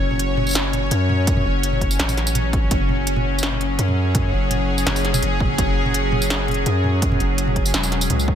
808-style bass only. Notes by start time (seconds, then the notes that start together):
Already playing: F#1
0.91 F#2
1.45 F#1
1.99 A1
2.71 F#1
3.79 F#2
4.32 F#1
4.86 F#1
5.22 F#1
5.58 F#1
6.66 F#2
7.20 F#1
7.74 E1
8.10 C#2